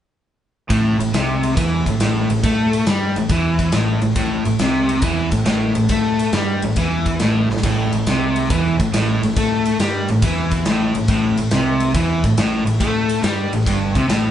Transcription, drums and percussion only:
0.70 kick loud
0.70 ride medium
1.00 ride medium
1.14 snare loud
1.14 ride medium
1.43 ride medium
1.51 snare soft
1.57 kick loud
1.57 ride loud
1.86 kick medium
1.86 ride medium
2.00 snare loud
2.00 ride loud
2.30 ride medium
2.38 snare soft
2.44 kick loud
2.44 ride medium
2.73 ride medium
2.86 snare loud
2.86 ride medium
3.16 ride medium
3.29 kick loud
3.29 ride medium
3.59 kick medium
3.59 ride medium
3.72 snare loud
3.72 ride medium
4.02 ride medium
4.10 snare soft
4.16 kick loud
4.16 ride medium
4.45 ride medium
4.59 snare loud
4.59 ride medium
4.89 ride medium
4.96 snare soft
5.02 kick loud
5.02 ride loud
5.32 kick medium
5.32 ride medium
5.45 snare loud
5.45 ride medium
5.75 ride medium
5.89 kick loud
5.89 ride loud
6.19 ride medium
6.33 snare loud
6.33 ride medium
6.62 ride medium
6.70 snare soft
6.76 kick loud
6.76 ride medium
7.06 kick medium
7.06 ride medium
7.19 snare loud
7.19 ride medium
7.50 snare medium
7.57 snare medium
7.63 kick loud
7.63 crash medium
7.63 ride medium
7.92 ride medium
8.07 snare loud
8.07 ride medium
8.36 ride medium
8.44 snare soft
8.50 kick loud
8.50 ride medium
8.80 kick medium
8.80 ride medium
8.94 snare loud
8.94 ride loud
9.23 ride medium
9.31 snare soft
9.36 kick loud
9.36 ride medium
9.65 ride medium
9.79 snare loud
9.79 ride loud
10.08 ride medium
10.22 kick loud
10.22 ride loud
10.51 kick medium
10.51 ride medium
10.65 snare loud
10.65 ride medium
10.95 ride medium
11.02 snare soft
11.08 kick loud
11.08 ride medium
11.37 ride medium
11.51 snare loud
11.51 ride medium
11.80 ride medium
11.88 snare soft
11.95 kick loud
11.95 ride medium
12.24 kick medium
12.24 ride medium
12.37 snare loud
12.37 ride loud
12.67 ride medium
12.80 kick loud
12.80 ride loud
13.09 ride medium
13.24 snare loud
13.24 ride medium
13.53 ride medium
13.61 snare soft
13.66 kick loud
13.66 ride loud
13.95 kick medium
13.95 ride medium
14.09 snare loud
14.09 ride loud

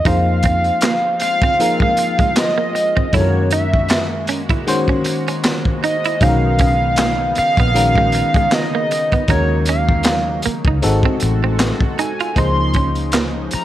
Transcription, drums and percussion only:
0.05 kick loud
0.05 closed hi-hat medium
0.43 kick medium
0.43 closed hi-hat medium
0.64 closed hi-hat soft
0.81 snare loud
0.81 clap loud
0.81 closed hi-hat medium
1.20 closed hi-hat medium
1.42 kick loud
1.42 closed hi-hat soft
1.60 closed hi-hat medium
1.80 kick loud
1.97 closed hi-hat medium
2.19 kick loud
2.19 closed hi-hat soft
2.36 snare loud
2.36 clap medium
2.36 closed hi-hat medium
2.75 closed hi-hat medium
2.97 kick medium
3.13 kick loud
3.13 closed hi-hat medium
3.51 closed hi-hat medium
3.74 kick medium
3.89 snare loud
3.89 clap loud
3.89 closed hi-hat medium
4.27 closed hi-hat medium
4.49 kick loud
4.49 closed hi-hat soft
4.67 closed hi-hat medium
4.88 kick medium
5.04 closed hi-hat medium
5.28 closed hi-hat soft
5.43 snare loud
5.43 clap loud
5.43 closed hi-hat medium
5.65 kick medium
5.83 closed hi-hat medium
6.04 closed hi-hat soft
6.21 kick loud
6.21 closed hi-hat medium
6.59 kick loud
6.59 closed hi-hat medium
6.96 snare loud
6.96 clap loud
6.96 closed hi-hat medium
7.35 closed hi-hat medium
7.57 kick loud
7.57 closed hi-hat soft
7.75 closed hi-hat medium
7.95 kick medium
8.12 closed hi-hat medium
8.34 kick loud
8.34 closed hi-hat soft
8.51 snare loud
8.51 clap medium
8.51 closed hi-hat medium
8.91 closed hi-hat medium
9.12 kick medium
9.12 closed hi-hat soft
9.28 kick loud
9.28 closed hi-hat medium
9.65 closed hi-hat medium
9.89 kick medium
10.03 snare loud
10.03 clap loud
10.03 closed hi-hat medium
10.42 closed hi-hat medium
10.65 kick loud
10.82 closed hi-hat medium
11.03 kick medium
11.20 closed hi-hat medium
11.59 snare loud
11.59 clap loud
11.59 closed hi-hat medium
11.81 kick loud
11.99 closed hi-hat medium
12.20 closed hi-hat soft
12.36 kick loud
12.36 closed hi-hat medium
12.74 kick medium
12.74 closed hi-hat medium
12.95 closed hi-hat soft
13.12 snare loud
13.12 clap loud
13.12 closed hi-hat medium
13.51 closed hi-hat medium

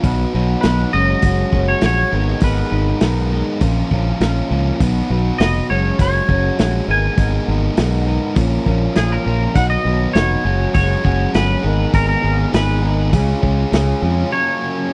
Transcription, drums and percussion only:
0.04 kick loud
0.04 open hi-hat soft
0.63 snare loud
0.63 open hi-hat soft
1.22 kick loud
1.22 open hi-hat medium
1.53 kick medium
1.81 snare loud
1.81 open hi-hat soft
2.40 kick loud
2.40 open hi-hat soft
3.01 snare loud
3.01 open hi-hat medium
3.61 kick loud
3.61 open hi-hat medium
3.91 kick medium
4.21 snare loud
4.21 open hi-hat soft
4.80 kick loud
4.80 open hi-hat soft
5.40 snare loud
5.40 open hi-hat soft
5.99 kick loud
5.99 open hi-hat medium
6.29 kick medium
6.59 snare loud
6.59 open hi-hat soft
7.18 kick loud
7.18 open hi-hat medium
7.77 snare loud
7.77 open hi-hat medium
8.36 kick loud
8.36 open hi-hat medium
8.66 kick medium
8.96 snare loud
8.96 open hi-hat soft
9.55 kick loud
9.55 open hi-hat soft
10.15 snare loud
10.15 open hi-hat soft
10.74 kick loud
10.74 open hi-hat medium
11.05 kick medium
11.34 snare loud
11.34 open hi-hat soft
11.94 kick loud
11.94 open hi-hat medium
12.54 snare loud
12.54 open hi-hat medium
13.13 kick loud
13.13 open hi-hat medium
13.43 kick medium
13.73 snare loud
13.73 open hi-hat medium

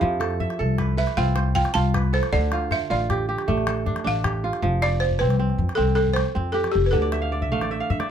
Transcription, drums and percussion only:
0.02 calabash thump medium
0.02 calabash click soft
0.21 calabash click medium
0.31 calabash click soft
0.40 calabash thump medium
0.40 calabash click soft
0.50 calabash click soft
0.78 calabash thump medium
0.78 calabash click medium
1.07 calabash click soft
1.17 calabash thump medium
1.36 calabash click medium
1.55 calabash thump medium
1.65 calabash click soft
1.75 calabash click soft
1.94 calabash thump medium
1.94 calabash click medium
2.04 calabash click soft
2.23 calabash click soft
2.32 calabash thump medium
2.52 calabash click medium
2.61 calabash click soft
2.71 calabash thump medium
2.71 calabash click soft
3.00 calabash click soft
3.10 calabash thump medium
3.10 calabash click medium
3.39 calabash click soft
3.48 calabash thump medium
3.58 calabash click soft
3.67 calabash click medium
3.77 calabash click soft
3.87 calabash thump medium
3.96 calabash click soft
4.15 calabash click soft
4.24 calabash thump medium
4.24 calabash click medium
4.53 calabash click medium
4.62 calabash thump medium
4.82 calabash click medium
5.11 calabash thump soft
5.30 calabash click soft
5.40 calabash click soft
5.50 calabash click soft
5.60 calabash thump medium
5.69 calabash click soft
5.88 calabash click soft
6.07 calabash thump soft
6.16 calabash click medium
6.26 calabash click soft
6.64 calabash click soft
6.74 calabash click soft
6.93 calabash thump medium
7.12 calabash click medium
7.42 calabash thump soft
7.61 calabash click soft
7.71 calabash click soft
7.81 calabash click soft
7.90 calabash thump medium
8.00 calabash click soft

